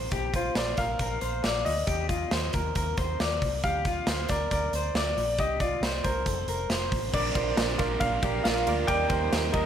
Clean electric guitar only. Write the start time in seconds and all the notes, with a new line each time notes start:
0.12 G4
0.35 F4
0.56 C5
0.78 A#4
1.01 A#4
1.22 C5
1.44 D5
1.87 G4
2.09 F4
2.31 C5
2.54 A#4
2.76 A#4
2.98 C5
3.21 D5
3.65 G4
3.87 F4
4.09 C5
4.31 A#4
4.52 A#4
4.75 C5
4.96 D5
5.39 G4
5.61 F4
5.84 C5
6.05 A#4
6.26 A4
6.49 A#4
6.72 C5
7.14 D5
7.35 C5
7.79 A#4
8.23 G4
8.45 F4
8.87 D5
9.09 C5
9.53 A#4